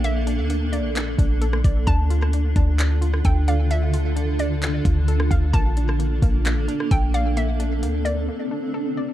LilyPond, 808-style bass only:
\new Staff \with { instrumentName = "808-style bass" } { \clef bass \time 4/4 \key bes \lydian \tempo 4 = 131 bes,,8. d,8.~ d,32 bes,,8.~ bes,,32 bes,,4 bes,,8 | d,4. d,4. d,4~ | d,2~ d,8 d,4 d,8 | bes,,4. bes,,8. a,,16 r8 bes,,4~ |
bes,,4 d,4 r2 | }